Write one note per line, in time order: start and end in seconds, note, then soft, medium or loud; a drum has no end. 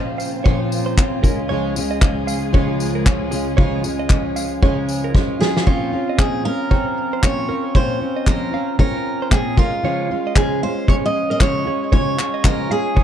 0.00 1.19 A#2 medium
0.00 1.19 C#3 medium
0.00 0.45 F3 medium
0.00 1.19 A#3 medium
0.00 0.45 C4 medium
0.00 0.45 C#4 medium
0.00 0.46 F4 medium
0.00 5.62 F4 medium
0.00 1.19 C5 medium
0.18 0.33 F5 medium
0.18 tambourine medium
0.44 0.97 A#2 medium
0.44 0.97 F3 loud
0.44 0.98 C4 medium
0.44 0.98 C#4 medium
0.44 1.00 F4 loud
0.44 0.59 C#5 medium
0.44 kick loud
0.72 tambourine medium
0.86 0.96 C5 medium
0.97 1.23 F3 medium
0.97 1.24 C4 medium
0.97 1.24 C#4 medium
0.97 1.22 F4 medium
0.97 kick loud
0.97 clap loud
1.23 5.63 C#2 medium
1.23 5.62 C#3 medium
1.23 5.63 G#3 medium
1.23 1.49 G#3 soft
1.23 1.50 C#4 medium
1.23 1.50 F4 medium
1.23 5.62 G#4 medium
1.23 1.38 A#4 medium
1.23 kick medium
1.23 tambourine medium
1.49 1.75 C#3 medium
1.49 1.76 F3 medium
1.49 1.76 G#3 medium
1.49 1.76 C#4 loud
1.49 1.75 F4 loud
1.49 1.74 C#5 loud
1.76 2.01 G#3 medium
1.76 2.01 C#4 medium
1.76 2.02 F4 medium
1.76 tambourine medium
1.91 2.16 D#5 medium
2.01 2.53 F3 medium
2.01 2.52 G#3 medium
2.01 2.53 C#4 medium
2.01 2.54 F4 medium
2.01 kick loud
2.01 clap loud
2.27 2.42 F5 medium
2.27 tambourine medium
2.53 3.05 C#3 medium
2.53 3.05 F3 loud
2.53 3.05 G#3 medium
2.53 3.06 C#4 loud
2.53 3.07 F4 medium
2.53 2.69 C#5 medium
2.53 kick loud
2.80 tambourine medium
2.95 3.05 A#4 medium
3.05 3.32 F3 medium
3.05 3.32 G#3 medium
3.05 3.31 C#4 medium
3.05 3.30 F4 medium
3.05 kick loud
3.05 clap loud
3.31 3.56 G#3 medium
3.31 3.57 C#4 medium
3.31 3.57 F4 medium
3.31 3.46 G#4 medium
3.31 tambourine medium
3.57 3.83 C#3 medium
3.57 3.84 F3 medium
3.57 3.84 G#3 medium
3.57 3.84 C#4 loud
3.57 3.82 F4 loud
3.57 3.82 C#5 loud
3.57 kick loud
3.83 4.09 G#3 soft
3.83 4.10 C#4 medium
3.83 4.10 F4 medium
3.83 tambourine medium
3.99 4.24 D#5 medium
4.10 4.62 F3 medium
4.10 4.62 G#3 medium
4.10 4.63 C#4 medium
4.10 4.63 F4 medium
4.10 kick loud
4.10 clap loud
4.36 4.51 F5 medium
4.36 tambourine medium
4.62 5.14 C#3 medium
4.62 5.13 F3 medium
4.62 5.13 G#3 medium
4.62 5.15 C#4 loud
4.62 5.16 F4 medium
4.62 4.77 C#5 medium
4.62 kick loud
4.89 tambourine medium
5.04 5.14 A#4 medium
5.14 5.40 F3 medium
5.14 5.40 G#3 medium
5.14 5.40 C#4 medium
5.14 5.38 F4 medium
5.14 kick loud
5.14 snare medium
5.39 5.66 G#3 soft
5.39 5.66 C#4 medium
5.39 5.66 F4 medium
5.39 5.65 G#4 medium
5.39 5.56 G#4 medium
5.39 snare medium
5.57 snare medium
5.66 5.92 A#2 medium
5.66 5.92 F3 medium
5.66 5.93 C4 medium
5.66 5.92 C#4 medium
5.66 6.20 F4 medium
5.66 5.91 F4 medium
5.66 5.92 C#5 loud
5.66 kick loud
5.92 6.17 C4 soft
5.92 6.17 C#4 soft
5.92 6.18 F4 medium
6.09 6.34 D#5 medium
6.17 6.44 A#2 medium
6.17 6.44 F3 medium
6.17 6.44 C4 medium
6.17 6.44 C#4 medium
6.17 6.42 F4 medium
6.17 6.43 G#4 medium
6.17 kick loud
6.17 clap loud
6.44 6.70 C4 soft
6.44 6.70 C#4 soft
6.44 6.70 F4 soft
6.44 7.24 A#4 medium
6.44 6.60 F5 medium
6.70 7.23 F3 soft
6.70 7.22 C4 medium
6.70 7.24 C#4 medium
6.70 7.24 F4 medium
6.70 6.86 C#5 medium
6.70 kick medium
7.13 7.23 C5 medium
7.23 7.49 A#2 medium
7.23 7.49 F3 medium
7.23 7.49 C4 medium
7.23 7.49 C#4 medium
7.23 7.48 F4 medium
7.23 7.76 C#5 medium
7.23 kick medium
7.23 clap loud
7.49 7.75 C4 soft
7.49 7.75 C#4 soft
7.49 7.75 F4 medium
7.49 7.64 A#4 medium
7.75 8.01 A#2 medium
7.75 8.01 F3 medium
7.75 8.02 C4 medium
7.75 8.00 C#4 medium
7.75 7.99 F4 medium
7.75 8.27 C5 medium
7.75 8.00 C#5 loud
7.75 kick loud
8.00 8.26 C4 soft
8.00 8.27 C#4 soft
8.00 8.27 F4 medium
8.16 8.41 D#5 medium
8.27 8.53 A#2 medium
8.27 8.53 F3 medium
8.27 8.53 C4 medium
8.27 8.52 C#4 medium
8.27 8.50 F4 medium
8.27 8.76 A#4 medium
8.27 kick loud
8.27 clap loud
8.52 8.78 C4 soft
8.52 8.78 C#4 soft
8.52 8.78 F4 soft
8.52 8.68 F5 medium
8.78 9.30 F3 soft
8.78 9.30 C4 medium
8.78 9.31 C#4 medium
8.78 9.31 F4 medium
8.78 9.28 A#4 loud
8.78 8.95 C#5 medium
8.78 kick medium
9.22 9.31 C5 medium
9.30 9.57 A#2 medium
9.30 9.57 F3 medium
9.30 9.57 C4 medium
9.30 9.57 C#4 medium
9.30 9.55 F4 medium
9.30 9.56 G#4 medium
9.30 kick medium
9.30 clap loud
9.56 9.83 G#3 soft
9.56 9.83 C#4 soft
9.56 9.83 F4 medium
9.56 10.32 F4 medium
9.56 9.73 A#4 medium
9.56 kick loud
9.83 10.09 C#3 medium
9.83 10.10 F3 medium
9.83 10.10 G#3 medium
9.83 10.10 C#4 medium
9.83 10.09 F4 medium
9.83 10.09 C#5 loud
10.10 10.35 G#3 soft
10.10 10.36 C#4 soft
10.10 10.36 F4 medium
10.27 10.51 D#5 medium
10.36 10.62 C#3 medium
10.36 10.62 F3 medium
10.36 10.62 G#3 medium
10.36 10.61 C#4 medium
10.36 10.60 F4 medium
10.36 10.60 G#4 medium
10.36 kick loud
10.36 clap loud
10.62 10.87 G#3 soft
10.62 10.88 C#4 medium
10.62 10.88 F4 medium
10.62 10.89 C5 medium
10.62 10.77 F5 medium
10.87 11.40 F3 medium
10.87 11.40 G#3 medium
10.87 11.41 C#4 medium
10.87 11.41 F4 medium
10.87 11.03 C#5 medium
10.87 10.95 C#5 loud
10.87 kick loud
11.06 11.29 D#5 loud
11.30 11.40 A#4 medium
11.30 11.41 D#5 loud
11.40 11.66 C#3 medium
11.40 11.66 F3 medium
11.40 11.66 G#3 medium
11.40 11.65 C#4 medium
11.40 11.64 F4 medium
11.40 11.89 C#5 medium
11.40 kick medium
11.40 clap loud
11.65 11.91 G#3 soft
11.65 11.92 C#4 soft
11.65 11.92 F4 medium
11.65 11.81 G#4 medium
11.91 12.18 C#3 medium
11.91 12.18 F3 medium
11.91 12.18 G#3 medium
11.91 12.18 C#4 medium
11.91 12.16 F4 medium
11.91 12.17 C#5 loud
11.91 12.46 C#5 medium
11.91 kick loud
12.17 12.44 G#3 soft
12.17 12.45 C#4 medium
12.17 12.44 F4 medium
12.17 clap medium
12.34 12.59 D#5 medium
12.44 12.70 C#3 medium
12.44 12.70 F3 medium
12.44 12.71 G#3 medium
12.44 12.70 C#4 medium
12.44 12.68 F4 medium
12.44 12.72 A#4 medium
12.44 kick loud
12.44 clap loud
12.70 12.95 G#3 soft
12.70 12.95 C#4 medium
12.70 12.96 F4 medium
12.70 13.04 G#4 medium
12.70 12.85 F5 medium
12.95 13.04 F3 medium
12.95 13.04 G#3 medium
12.95 13.04 C#4 medium
12.95 13.04 F4 medium
12.95 13.04 C#5 medium
12.95 kick medium